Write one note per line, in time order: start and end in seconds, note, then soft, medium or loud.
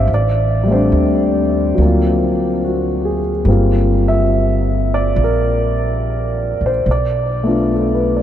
0.00 0.11 E3 soft
0.00 0.10 A3 soft
0.00 0.11 C5 medium
0.07 0.89 A1 medium
0.14 0.66 D5 medium
0.63 1.76 G3 soft
0.63 1.78 A3 soft
0.71 1.80 C4 soft
0.71 1.82 D4 soft
0.71 3.20 C5 medium
0.92 1.73 D#2 medium
1.74 3.43 D2 medium
1.74 3.45 F#3 soft
1.79 3.45 A#3 soft
1.79 3.47 C4 soft
1.86 3.48 F4 soft
2.64 3.31 F#4 soft
3.05 3.65 G#4 soft
3.45 5.12 G1 medium
3.45 6.85 G3 soft
3.45 6.86 A#3 soft
3.45 6.87 C4 soft
3.50 6.88 F4 soft
4.08 4.88 E5 medium
4.94 5.19 D5 medium
5.16 6.56 A#1 medium
5.24 6.68 A#4 medium
6.61 6.85 A#1 soft
6.66 6.90 C5 medium
6.86 8.22 B1 medium
6.91 8.15 D5 medium
7.44 8.22 A3 soft
7.44 8.22 B3 soft
7.44 8.22 D4 soft
7.48 8.22 F4 soft
7.74 8.14 A4 soft
7.95 8.22 B4 soft
8.17 8.22 D5 soft